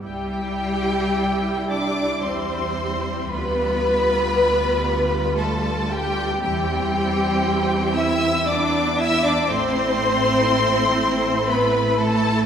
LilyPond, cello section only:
\new Staff \with { instrumentName = "Cello section" } { \time 3/4 \key c \major \tempo 4 = 58 g4. d'8 c'4 | b2 a8 g8 | g4. e'8 d'8 e'16 d'16 | c'2 b8 a8 | }